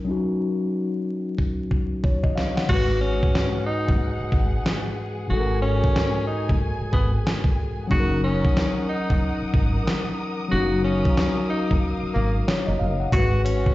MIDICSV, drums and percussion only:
0, 0, Header, 1, 2, 480
1, 0, Start_track
1, 0, Tempo, 652174
1, 60, Time_signature, 4, 2, 24, 8
1, 10117, End_track
2, 0, Start_track
2, 0, Title_t, "Drums"
2, 1019, Note_on_c, 9, 36, 58
2, 1093, Note_off_c, 9, 36, 0
2, 1259, Note_on_c, 9, 36, 73
2, 1333, Note_off_c, 9, 36, 0
2, 1499, Note_on_c, 9, 36, 91
2, 1573, Note_off_c, 9, 36, 0
2, 1646, Note_on_c, 9, 36, 78
2, 1719, Note_off_c, 9, 36, 0
2, 1748, Note_on_c, 9, 38, 100
2, 1821, Note_off_c, 9, 38, 0
2, 1894, Note_on_c, 9, 38, 90
2, 1967, Note_off_c, 9, 38, 0
2, 1979, Note_on_c, 9, 49, 97
2, 1980, Note_on_c, 9, 36, 99
2, 2052, Note_off_c, 9, 49, 0
2, 2054, Note_off_c, 9, 36, 0
2, 2376, Note_on_c, 9, 36, 86
2, 2450, Note_off_c, 9, 36, 0
2, 2467, Note_on_c, 9, 38, 113
2, 2540, Note_off_c, 9, 38, 0
2, 2859, Note_on_c, 9, 36, 89
2, 2933, Note_off_c, 9, 36, 0
2, 3180, Note_on_c, 9, 36, 94
2, 3254, Note_off_c, 9, 36, 0
2, 3429, Note_on_c, 9, 38, 111
2, 3502, Note_off_c, 9, 38, 0
2, 4296, Note_on_c, 9, 36, 85
2, 4370, Note_off_c, 9, 36, 0
2, 4386, Note_on_c, 9, 38, 113
2, 4460, Note_off_c, 9, 38, 0
2, 4779, Note_on_c, 9, 36, 87
2, 4853, Note_off_c, 9, 36, 0
2, 5100, Note_on_c, 9, 36, 93
2, 5174, Note_off_c, 9, 36, 0
2, 5349, Note_on_c, 9, 38, 111
2, 5423, Note_off_c, 9, 38, 0
2, 5476, Note_on_c, 9, 36, 94
2, 5550, Note_off_c, 9, 36, 0
2, 5820, Note_on_c, 9, 36, 99
2, 5893, Note_off_c, 9, 36, 0
2, 6216, Note_on_c, 9, 36, 88
2, 6290, Note_off_c, 9, 36, 0
2, 6306, Note_on_c, 9, 38, 108
2, 6379, Note_off_c, 9, 38, 0
2, 6699, Note_on_c, 9, 36, 92
2, 6772, Note_off_c, 9, 36, 0
2, 7019, Note_on_c, 9, 36, 94
2, 7093, Note_off_c, 9, 36, 0
2, 7267, Note_on_c, 9, 38, 110
2, 7341, Note_off_c, 9, 38, 0
2, 8135, Note_on_c, 9, 36, 87
2, 8209, Note_off_c, 9, 36, 0
2, 8224, Note_on_c, 9, 38, 109
2, 8298, Note_off_c, 9, 38, 0
2, 8618, Note_on_c, 9, 36, 86
2, 8691, Note_off_c, 9, 36, 0
2, 9187, Note_on_c, 9, 38, 114
2, 9260, Note_off_c, 9, 38, 0
2, 9659, Note_on_c, 9, 36, 104
2, 9663, Note_on_c, 9, 42, 99
2, 9733, Note_off_c, 9, 36, 0
2, 9737, Note_off_c, 9, 42, 0
2, 9904, Note_on_c, 9, 42, 83
2, 9977, Note_off_c, 9, 42, 0
2, 10055, Note_on_c, 9, 36, 83
2, 10117, Note_off_c, 9, 36, 0
2, 10117, End_track
0, 0, End_of_file